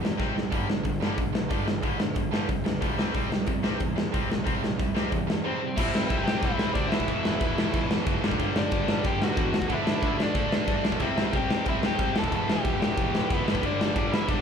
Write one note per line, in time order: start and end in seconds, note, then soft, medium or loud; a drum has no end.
0.00 0.14 E2 loud
0.00 0.17 C3 medium
0.00 0.18 G3 medium
0.05 snare loud
0.18 0.33 C2 medium
0.18 0.33 C3 medium
0.18 0.34 G3 medium
0.18 0.35 C4 loud
0.18 kick loud
0.18 snare medium
0.35 0.49 C2 medium
0.35 0.50 C3 medium
0.35 0.50 G3 medium
0.35 snare medium
0.50 0.66 G1 medium
0.50 0.67 G2 medium
0.50 0.67 D3 loud
0.50 0.67 G3 loud
0.50 kick loud
0.50 open hi-hat medium
0.68 0.82 G1 medium
0.68 0.82 G2 medium
0.68 0.82 D3 medium
0.68 snare medium
0.83 0.98 G1 medium
0.83 0.99 G2 medium
0.83 0.99 D3 medium
0.83 kick loud
0.83 open hi-hat medium
1.00 1.15 G1 medium
1.00 1.16 G2 medium
1.00 1.16 D3 medium
1.00 1.17 G3 medium
1.00 snare loud
1.17 1.45 B1 medium
1.17 1.32 G2 medium
1.17 1.32 D3 medium
1.17 kick loud
1.17 open hi-hat medium
1.33 1.48 G2 medium
1.33 1.49 D3 medium
1.33 snare loud
1.49 1.78 G1 medium
1.49 1.64 G2 medium
1.49 1.64 D3 loud
1.49 1.66 G3 loud
1.49 kick loud
1.49 open hi-hat medium
1.65 1.81 G2 medium
1.65 1.81 D3 medium
1.65 snare loud
1.82 2.10 G1 medium
1.82 1.97 G2 medium
1.82 1.97 D3 medium
1.82 1.99 G3 loud
1.82 kick loud
1.82 open hi-hat medium
1.98 2.13 G2 medium
1.98 2.14 D3 medium
1.98 snare loud
2.14 2.30 G1 medium
2.14 2.30 G2 medium
2.14 2.31 D3 medium
2.14 kick loud
2.14 open hi-hat medium
2.31 2.45 G1 medium
2.31 2.46 G2 medium
2.31 2.47 D3 medium
2.31 2.48 G3 medium
2.31 snare loud
2.47 2.76 C2 medium
2.47 2.63 G2 medium
2.47 2.63 D3 medium
2.47 kick loud
2.47 open hi-hat medium
2.64 2.80 G2 medium
2.64 2.80 D3 medium
2.64 snare loud
2.81 2.96 D2 medium
2.81 2.97 G2 medium
2.81 2.96 D3 medium
2.81 2.96 G3 loud
2.81 kick loud
2.81 open hi-hat medium
2.96 3.11 C2 medium
2.96 3.13 C3 medium
2.96 3.13 G3 medium
2.96 3.14 C4 medium
2.96 snare loud
3.14 3.28 C2 medium
3.14 3.29 C3 medium
3.14 3.30 G3 medium
3.14 3.31 C4 medium
3.14 kick loud
3.14 open hi-hat medium
3.30 3.44 C2 medium
3.30 3.45 C3 medium
3.30 3.46 G3 medium
3.30 snare loud
3.47 3.61 C2 medium
3.47 3.62 C3 medium
3.47 3.62 G3 medium
3.47 kick loud
3.47 open hi-hat medium
3.62 3.77 C2 medium
3.62 3.78 C3 medium
3.62 3.79 G3 medium
3.62 3.80 C4 medium
3.62 snare loud
3.79 4.07 E2 medium
3.79 3.95 C3 medium
3.79 3.95 G3 medium
3.79 kick loud
3.79 open hi-hat medium
3.96 4.11 C3 medium
3.96 4.11 G3 medium
3.96 snare loud
4.12 4.41 C2 medium
4.12 4.28 C3 medium
4.12 4.28 G3 loud
4.12 4.29 C4 loud
4.12 kick loud
4.12 open hi-hat medium
4.30 4.45 C3 medium
4.30 4.45 G3 medium
4.30 snare loud
4.46 4.73 C2 medium
4.46 4.61 C3 loud
4.46 4.62 G3 medium
4.46 4.62 C4 loud
4.46 kick loud
4.46 open hi-hat medium
4.63 4.77 C3 medium
4.63 4.77 G3 medium
4.63 snare loud
4.79 4.93 C2 medium
4.79 4.93 C3 medium
4.79 4.94 G3 medium
4.79 kick loud
4.79 open hi-hat medium
4.95 5.09 C2 medium
4.95 5.10 C3 medium
4.95 5.11 G3 medium
4.95 5.11 C4 medium
4.95 snare loud
5.12 5.39 E2 medium
5.12 5.26 C3 medium
5.12 5.26 G3 medium
5.12 kick loud
5.12 open hi-hat medium
5.27 5.42 C3 medium
5.27 5.43 G3 medium
5.27 snare loud
5.44 5.60 C3 medium
5.44 5.60 G3 loud
5.44 5.60 C4 loud
5.44 5.76 C4 medium
5.44 5.76 C5 medium
5.61 5.75 C3 medium
5.61 5.76 G3 medium
5.76 5.89 C2 medium
5.76 6.40 C3 medium
5.76 5.93 C3 loud
5.76 6.42 G3 loud
5.76 5.94 G3 loud
5.76 5.92 C4 loud
5.76 6.43 C4 loud
5.76 6.08 E4 medium
5.76 6.07 E5 loud
5.76 kick loud
5.76 crash loud
5.76 crash medium
5.92 6.05 C2 loud
5.92 6.09 C3 medium
5.92 6.10 G3 medium
5.92 6.10 C4 medium
5.92 snare loud
6.08 6.22 C2 medium
6.08 6.27 C3 loud
6.08 6.27 G3 medium
6.08 6.26 C4 loud
6.08 6.24 E4 medium
6.08 6.26 E5 medium
6.08 kick loud
6.08 crash medium
6.24 6.37 C2 medium
6.24 6.44 G3 medium
6.24 6.44 C4 loud
6.24 6.42 G4 medium
6.24 6.42 G5 loud
6.24 snare loud
6.29 6.43 C3 medium
6.41 6.67 C2 loud
6.41 6.90 C3 medium
6.41 6.60 C3 loud
6.41 6.93 G3 medium
6.41 6.60 G3 loud
6.41 6.92 C4 loud
6.41 6.74 E4 medium
6.41 6.73 E5 loud
6.41 kick loud
6.41 crash medium
6.45 6.58 C4 loud
6.59 6.75 C3 medium
6.59 6.77 G3 medium
6.59 6.76 C4 medium
6.59 snare loud
6.73 6.87 D2 medium
6.73 6.91 C3 medium
6.73 6.93 G3 medium
6.73 6.91 D4 medium
6.73 6.89 D5 medium
6.73 kick loud
6.73 crash medium
6.77 6.92 C4 loud
6.89 7.03 E1 medium
6.89 7.55 E2 medium
6.89 7.09 E2 medium
6.89 7.56 B2 medium
6.89 7.08 B2 loud
6.89 7.86 E4 medium
6.89 7.85 E5 medium
6.89 snare loud
6.94 7.55 E3 loud
6.94 7.08 E3 loud
7.00 kick medium
7.08 7.20 E1 medium
7.08 7.24 E2 medium
7.08 7.25 B2 medium
7.08 7.25 E3 loud
7.08 kick medium
7.08 crash medium
7.24 7.36 E1 loud
7.24 7.41 E2 medium
7.24 7.41 B2 loud
7.24 7.39 E3 medium
7.24 snare loud
7.40 7.53 E1 loud
7.40 7.55 E2 medium
7.40 7.55 B2 medium
7.40 7.56 E3 loud
7.40 kick loud
7.40 crash medium
7.56 7.69 E1 medium
7.56 7.72 E2 medium
7.56 7.71 B2 loud
7.56 8.22 B2 medium
7.56 8.21 E3 medium
7.56 7.71 E3 loud
7.56 snare loud
7.60 8.21 E2 medium
7.73 7.97 E1 loud
7.73 7.88 E2 medium
7.73 7.88 B2 loud
7.73 7.89 E3 loud
7.73 kick loud
7.73 crash medium
7.89 8.05 E2 medium
7.89 8.05 B2 medium
7.89 8.04 E3 loud
7.89 snare loud
8.05 8.19 F#1 loud
8.05 8.22 E2 medium
8.05 8.22 B2 medium
8.05 8.21 E3 loud
8.05 kick loud
8.05 crash medium
8.21 8.35 G1 medium
8.21 8.86 G2 medium
8.21 8.38 G2 loud
8.21 8.37 D3 loud
8.21 8.87 D3 loud
8.21 8.37 G3 loud
8.21 8.85 G3 loud
8.21 snare loud
8.31 kick medium
8.38 8.52 G1 loud
8.38 8.54 G2 medium
8.38 8.54 D3 loud
8.38 8.56 G3 loud
8.38 kick loud
8.38 crash medium
8.54 8.67 G1 medium
8.54 8.71 G2 medium
8.54 8.71 D3 medium
8.54 8.70 G3 loud
8.54 9.02 D4 medium
8.54 9.07 D5 medium
8.54 snare loud
8.71 8.84 G1 medium
8.71 8.86 G2 medium
8.71 8.88 D3 medium
8.71 8.88 G3 loud
8.71 kick loud
8.71 crash medium
8.86 9.00 G1 medium
8.86 9.03 G2 loud
8.86 9.53 G2 medium
8.86 9.53 D3 medium
8.86 9.03 D3 medium
8.86 9.52 G3 medium
8.86 9.02 G3 loud
8.86 snare loud
9.03 9.29 G1 loud
9.03 9.18 G2 loud
9.03 9.20 D3 loud
9.03 9.21 G3 loud
9.03 9.20 G4 medium
9.03 9.24 G5 medium
9.03 kick loud
9.03 crash medium
9.20 9.37 G2 medium
9.20 9.37 D3 medium
9.20 9.36 G3 medium
9.20 9.67 F#4 medium
9.20 snare loud
9.24 9.71 F#5 loud
9.37 9.61 E2 medium
9.37 9.51 G2 medium
9.37 9.52 D3 medium
9.37 9.53 G3 medium
9.37 kick loud
9.37 crash medium
9.52 9.68 G2 medium
9.52 9.68 D3 medium
9.52 9.69 G3 loud
9.52 snare loud
9.62 kick medium
9.68 9.82 D2 medium
9.68 10.32 D3 medium
9.68 9.87 D3 medium
9.68 9.86 A3 loud
9.68 10.33 A3 medium
9.68 9.85 D4 loud
9.68 kick loud
9.68 crash medium
9.72 10.35 D4 loud
9.72 10.17 E4 medium
9.72 10.23 E5 loud
9.86 9.98 D2 medium
9.86 10.01 D3 medium
9.86 10.01 A3 medium
9.86 10.02 D4 loud
9.86 snare loud
10.02 10.15 D2 medium
10.02 10.18 D3 medium
10.02 10.17 A3 loud
10.02 10.16 D4 loud
10.02 kick loud
10.02 crash medium
10.18 10.30 D2 medium
10.18 10.32 D3 medium
10.18 10.33 A3 medium
10.18 10.34 D4 loud
10.18 10.82 D4 medium
10.18 snare loud
10.23 10.83 D5 loud
10.33 10.59 D2 medium
10.33 10.98 D3 medium
10.33 10.49 D3 loud
10.33 10.49 A3 loud
10.33 10.99 A3 medium
10.33 10.48 D4 loud
10.33 11.00 D4 medium
10.33 kick loud
10.33 crash medium
10.49 10.65 D3 medium
10.49 10.66 A3 medium
10.49 10.67 D4 loud
10.49 snare loud
10.67 10.80 G2 medium
10.67 10.84 D3 medium
10.67 10.83 A3 medium
10.67 10.82 D4 loud
10.67 kick loud
10.67 crash medium
10.83 10.96 B1 medium
10.83 10.98 D3 medium
10.83 10.99 A3 medium
10.83 10.99 D4 medium
10.83 snare loud
10.92 kick loud
10.98 11.12 C2 loud
10.98 11.17 C3 medium
10.98 11.63 C3 loud
10.98 11.17 G3 loud
10.98 11.66 G3 loud
10.98 11.16 C4 loud
10.98 11.31 E4 medium
10.98 kick loud
10.98 crash medium
11.03 11.66 C4 loud
11.03 11.36 E5 loud
11.17 11.29 C2 medium
11.17 11.30 C3 medium
11.17 11.32 G3 medium
11.17 11.32 C4 loud
11.17 snare loud
11.32 11.45 C2 medium
11.32 11.49 C3 medium
11.32 11.48 G3 loud
11.32 11.47 C4 loud
11.32 11.65 G4 medium
11.32 kick loud
11.32 crash medium
11.37 11.68 G5 loud
11.49 11.62 C2 medium
11.49 11.66 C3 medium
11.49 11.67 G3 medium
11.49 11.67 C4 medium
11.49 snare loud
11.64 11.90 C2 loud
11.64 12.14 C3 medium
11.64 11.83 C3 loud
11.64 12.18 G3 medium
11.64 11.83 G3 loud
11.64 12.15 C4 medium
11.64 kick loud
11.64 crash medium
11.69 11.82 C4 loud
11.69 11.83 E4 medium
11.69 11.85 E5 loud
11.83 11.98 C3 medium
11.83 11.99 G3 medium
11.83 11.99 C4 medium
11.83 12.14 G4 medium
11.83 12.18 G5 loud
11.83 snare loud
11.98 12.11 C2 medium
11.98 12.15 C3 medium
11.98 12.18 G3 medium
11.98 12.15 C4 medium
11.98 kick loud
11.98 crash medium
12.14 12.26 E1 medium
12.14 12.80 E2 loud
12.14 12.33 E2 medium
12.14 12.80 B2 medium
12.14 12.32 B2 loud
12.14 12.32 A4 medium
12.14 snare loud
12.18 12.31 E3 loud
12.18 12.78 E3 loud
12.18 12.34 A5 loud
12.24 kick medium
12.32 12.44 E1 loud
12.32 12.48 E2 medium
12.32 12.50 B2 medium
12.32 12.50 E3 loud
12.32 12.48 A4 medium
12.32 kick loud
12.32 crash medium
12.36 12.51 A5 loud
12.46 12.59 E1 medium
12.46 12.65 E2 medium
12.46 12.79 G4 medium
12.46 snare loud
12.51 12.64 B2 medium
12.51 12.63 E3 loud
12.51 12.82 G5 loud
12.64 12.77 E1 medium
12.64 12.80 E2 medium
12.64 12.80 B2 medium
12.64 12.81 E3 loud
12.64 kick loud
12.64 crash medium
12.79 12.92 E1 medium
12.79 12.98 E2 medium
12.79 12.97 B2 medium
12.79 13.46 B2 medium
12.79 13.45 E3 medium
12.79 12.96 E3 medium
12.79 13.27 G4 medium
12.79 snare loud
12.83 13.44 E2 medium
12.83 13.33 G5 loud
12.97 13.21 E1 medium
12.97 13.13 E2 medium
12.97 13.13 B2 loud
12.97 13.14 E3 loud
12.97 kick loud
12.97 crash medium
13.14 13.32 E2 medium
13.14 13.32 B2 medium
13.14 13.31 E3 loud
13.14 snare loud
13.30 13.42 F#1 medium
13.30 13.46 E2 medium
13.30 13.46 B2 medium
13.30 13.47 E3 loud
13.30 13.62 B3 medium
13.30 13.66 B4 loud
13.30 kick loud
13.30 crash medium
13.44 13.58 G1 loud
13.44 14.10 G2 medium
13.44 13.63 G2 loud
13.44 13.62 D3 loud
13.44 14.11 D3 loud
13.44 14.09 G3 medium
13.44 13.62 G3 loud
13.44 snare loud
13.55 kick medium
13.63 13.75 G1 medium
13.63 13.79 G2 medium
13.63 13.80 D3 loud
13.63 13.80 G3 loud
13.63 13.94 D4 medium
13.63 13.97 D5 loud
13.63 kick loud
13.63 crash medium
13.80 13.91 G1 medium
13.80 13.96 G2 medium
13.80 13.95 D3 medium
13.80 13.94 G3 loud
13.80 snare loud
13.95 14.08 G1 loud
13.95 14.10 G2 medium
13.95 14.11 D3 medium
13.95 14.12 G3 loud
13.95 14.11 D4 medium
13.95 14.14 D5 medium
13.95 kick loud
13.95 crash medium
14.10 14.24 G1 medium
14.10 14.29 G2 medium
14.10 14.41 G2 medium
14.10 14.28 D3 medium
14.10 14.41 D3 medium
14.10 14.41 G3 medium
14.10 14.27 G3 medium
14.10 14.27 E4 medium
14.10 14.31 E5 loud
14.10 snare loud
14.28 14.41 G1 loud
14.28 14.41 G2 medium
14.28 14.41 D3 loud
14.28 14.41 G3 loud
14.28 14.41 D4 medium
14.28 14.41 D5 loud
14.28 kick loud
14.28 crash medium